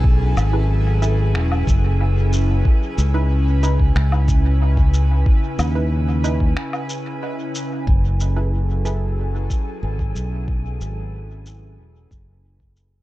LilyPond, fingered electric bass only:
\new Staff \with { instrumentName = "Fingered electric bass" } { \clef bass \time 4/4 \key fis \dorian \tempo 4 = 92 b,,8 gis,,4. e,,8 fis,,4. | r8 cis,4. cis,2 | r8 dis,4. r2 | fis,,2~ fis,,8 r8 gis,,8 b,,8~ |
b,,8 gis,,4. e,,8 fis,,4. | }